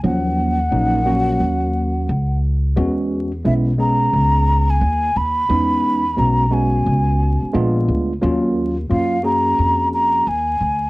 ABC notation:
X:1
M:4/4
L:1/16
Q:"Swing 16ths" 1/4=88
K:Ebm
V:1 name="Flute"
g12- g2 z2 | z4 =e2 b4- b ^g3 =b2- | =b4 _b2 ^g6 z4 | z4 f2 b4 b2 a4 |]
V:2 name="Tine electric piano"
[F,G,B,D]3 z [G,B,DE]2 [G,B,DG]6 z4 | [^G,=B,^C^F]3 z [G,B,C=E]2 [G,B,C^G]6 z4 | [^G,=B,^CE]3 z [G,B,C^F]2 [G,B,CF]6 [A,_C=D=F]4 | [G,B,DF]3 z [G,B,DF]2 [B,DGA]6 z4 |]
V:3 name="Upright bass" clef=bass
E,,4 B,,,4 E,,4 D,,4 | =E,,4 =B,,,4 ^C,,4 _E,,2 E,,2 | =E,,4 =B,,,4 ^C,,3 z _B,,,2 =D,,2 | E,,4 G,,4 F,,4 E,,2 =D,,2 |]